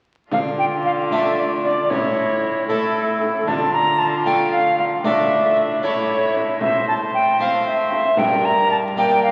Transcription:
0.31 1.86 D3 medium
0.31 1.86 D3 soft
0.31 1.91 F4 medium
0.31 0.39 F5 medium
0.31 frame drum medium
0.59 0.65 G5 medium
0.85 0.91 F5 medium
1.11 1.68 A3 soft
1.11 1.69 D4 soft
1.11 1.69 A4 soft
1.11 1.38 E5 medium
1.11 frame drum soft
1.38 1.44 D5 medium
1.63 1.91 D5 medium
1.63 frame drum soft
1.90 3.44 A2 medium
1.90 3.44 A2 soft
1.90 2.68 E4 medium
1.90 2.67 C#5 medium
1.90 frame drum medium
2.67 3.26 A3 soft
2.67 3.49 E4 medium
2.67 3.26 E4 soft
2.67 3.45 A4 medium
2.67 3.26 A4 soft
2.67 frame drum soft
3.22 frame drum soft
3.46 5.01 D3 medium
3.46 5.05 F4 medium
3.46 3.72 A5 medium
3.46 frame drum medium
3.73 4.00 A#5 medium
3.99 4.25 A5 medium
4.25 4.83 A3 soft
4.25 4.83 F4 soft
4.25 4.83 A4 soft
4.25 4.51 G5 medium
4.25 frame drum soft
4.51 4.77 F5 medium
4.79 4.85 F5 medium
4.79 frame drum soft
5.04 8.14 A2 medium
5.04 5.79 A3 soft
5.04 5.79 D4 soft
5.04 5.85 D4 medium
5.04 5.79 A4 medium
5.04 5.81 E5 medium
5.04 frame drum medium
5.82 6.57 A3 soft
5.82 6.58 E4 soft
5.82 6.62 E4 medium
5.82 6.58 A4 soft
5.82 6.35 C#5 medium
5.82 frame drum soft
6.35 frame drum soft
6.61 8.15 C5 medium
6.61 6.87 E5 medium
6.61 frame drum medium
6.88 6.94 A5 medium
7.14 7.40 G5 medium
7.39 7.96 A3 soft
7.39 7.96 C4 soft
7.39 7.97 C5 soft
7.39 7.66 F5 medium
7.39 frame drum soft
7.67 7.92 E5 medium
7.91 8.20 E5 medium
7.91 frame drum soft
8.17 9.31 G2 medium
8.17 8.95 A#4 medium
8.17 8.47 G5 medium
8.17 frame drum medium
8.45 8.71 A#5 medium
8.71 8.77 A5 medium
8.96 9.31 A#3 soft
8.96 9.31 D4 soft
8.96 9.31 G4 medium
8.96 9.31 A#4 medium
8.96 9.23 G5 medium
8.96 frame drum soft
9.23 9.31 F5 medium

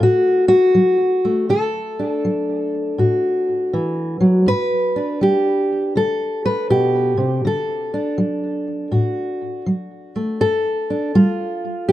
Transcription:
0.00 0.70 A2 medium
0.00 1.24 A3 medium
0.00 0.47 F#4 medium
0.48 1.49 F#4 medium
0.75 1.44 F#3 medium
1.25 4.47 A3 medium
1.49 2.19 D3 medium
1.49 2.98 A4 loud
1.99 4.96 D4 soft
2.25 2.93 F#3 medium
2.98 3.67 A2 medium
2.98 4.47 F#4 medium
3.73 4.20 E3 medium
4.20 4.47 F#3 medium
4.46 5.16 G2 medium
4.46 5.22 B4 loud
4.96 7.93 D4 medium
5.21 5.90 G3 medium
5.21 5.96 G4 loud
5.95 6.65 D3 medium
5.95 6.45 A4 loud
6.46 6.70 B4 medium
6.70 7.17 B2 medium
6.70 7.44 G4 medium
7.17 7.44 C3 medium
7.45 8.13 D3 medium
7.45 8.92 A4 medium
7.94 10.90 D4 soft
8.18 8.87 F#3 medium
8.91 9.61 A2 medium
8.91 10.41 F#4 soft
9.66 10.36 F#3 medium
10.16 10.41 A3 soft
10.41 11.10 G2 medium
10.41 11.88 A4 loud
10.90 11.15 D4 soft
11.15 11.84 G3 medium
11.15 11.89 F4 medium
11.89 11.92 G4 medium

